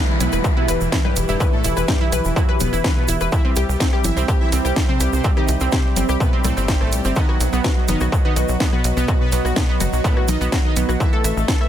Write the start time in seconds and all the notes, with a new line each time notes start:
Already playing: G4 B4 E5, downlifter
0.08 E3 E4
0.20 B1 B2 B3 E4 B4, open hi-hat, low conga, shaker
0.32 E1 E3 E4 B4, cross-stick, shaker
0.44 E3 E4, kick, shaker
0.56 B2 B3 E4 B4
0.68 E1 E3 E4 B4, cross-stick, open hi-hat, shaker
0.81 E1 E3 E4, shaker
0.92 E3 E4, kick, snare, shaker
1.05 G2 G3 G4 B4, cross-stick, low conga
1.16 E1 E3 E4, open hi-hat, shaker
1.28 E1 G2 G3 E4 G4, shaker
1.40 E3 E4 B4, kick, cross-stick, shaker
1.53 A2 A3 A4
1.64 E1 E3 E4, open hi-hat, shaker
1.77 E1 E3 E4 B4, cross-stick, shaker
1.88 G2 G3 G4, kick, snare, shaker
2.01 E3 E4
2.12 B1 E3 E4 B4, cross-stick, open hi-hat, low conga, shaker
2.24 E1 E3 E4, shaker
2.36 F#2 F#3 E4 F#4, kick, shaker
2.49 E3 E4 B4, cross-stick
2.60 E1 B2 B3 B4, open hi-hat, low conga, shaker
2.73 E1 E3 E4, shaker
2.84 E3 E4 B4, kick, cross-stick, snare, shaker
2.97 B2 B3 B4
3.08 E1 E3 E4, open hi-hat, shaker
3.20 E1 E3 E4 B4, cross-stick, shaker
3.32 E3 C4 E4 C5 E5 G5 B5, kick, shaker
3.45 G3 C4 G4
3.56 C2 G3 G4, cross-stick, open hi-hat, shaker
3.69 C2 G3 G4, shaker
3.80 C4, kick, snare, shaker
3.93 G3 G4, cross-stick
4.04 G1 E3 E4 E5, open hi-hat, low conga, shaker
4.17 C2 G3 C4 G4, shaker
4.28 G3 G4, kick, cross-stick, shaker
4.40 E3 E4 E5
4.52 C2 G3 C4 G4, open hi-hat, shaker
4.65 C2 G3 G4, cross-stick, shaker
4.76 G3 G4, kick, snare, shaker
4.89 C3 C4 C5, low conga
5.00 C2 G3 G4, cross-stick, open hi-hat, shaker
5.13 C2 C3 C4 C5, shaker
5.24 G3 C4 G4, kick, shaker
5.37 D#3 D#4 G4 D#5, cross-stick
5.48 C2 G3 G4, open hi-hat, shaker
5.60 C2 G3 C4 G4, shaker
5.72 C3 C4 G4 C5, kick, cross-stick, snare, shaker
5.85 G3 G4
5.96 G1 G3 C4 G4, open hi-hat, low conga, shaker
6.09 C2 G3 G4, cross-stick, shaker
6.20 B2 B3 B4, kick, shaker
6.33 G3 C4 G4
6.44 C2 A2 A3 C4 A4, cross-stick, open hi-hat, low conga, shaker
6.57 G1 G3 C4 G4, shaker
6.68 G3 G4 C5, kick, snare, shaker
6.81 A2 A3 C4 A4, cross-stick
6.92 C2 G3 G4, open hi-hat, shaker
7.04 G1 G3 C4 G4, shaker
7.16 D#3 B3 D#4 F#4 B4 D#5, kick, shaker
7.29 F#3 F#4, cross-stick
7.40 B1 F#3 F#4, open hi-hat, shaker
7.53 B1 F#3 B3 F#4, shaker
7.64 F#4, kick, cross-stick, snare, shaker
7.77 F#3 F#4
7.88 F#1 D#3 B3 D#4 D#5, open hi-hat, low conga, shaker
8.00 B1 F#3 F#4, cross-stick, shaker
8.12 F#3 F#4, kick, shaker
8.25 D#3 B3 D#4 D#5
8.36 B1 F#3 F#4, cross-stick, open hi-hat, shaker
8.48 B1 F#3 F#4, shaker
8.60 F#3 B3 F#4, kick, snare, shaker
8.73 B2 B3 F#4 B4, cross-stick, low conga
8.84 B1 F#3 F#4, open hi-hat, shaker
8.97 B1 B2 B3 B4, shaker
9.08 F#3 F#4, kick, cross-stick, shaker
9.21 B2 B3 B4
9.32 B1 F#3 B3 F#4, open hi-hat, shaker
9.45 B1 F#3 F#4, cross-stick, shaker
9.56 B2 B3 B4, kick, snare, shaker
9.69 F#3 B3 F#4
9.80 F#1 F#3 F#4, cross-stick, open hi-hat, low conga, shaker
9.93 B1 F#3 F#4, shaker
10.04 A2 A3 B3 A4, kick, shaker
10.17 F#3 F#4, cross-stick
10.28 B1 D#3 D#4 D#5, open hi-hat, low conga, shaker
10.41 B1 F#3 B3 F#4, shaker
10.52 F#3 F#4, kick, cross-stick, snare, shaker
10.65 D#3 D#4 D#5
10.76 B1 F#3 B3 F#4, open hi-hat, shaker
10.89 B1 F#3 F#4, cross-stick, shaker
11.00 E3 A3 E4 A4 C5 E5, kick, shaker
11.13 A3 A4
11.24 A1 A3 A4 E5, cross-stick, open hi-hat, shaker
11.37 A1 A3 A4, shaker
11.48 A4, kick, snare, shaker
11.61 A3 A4 E5, cross-stick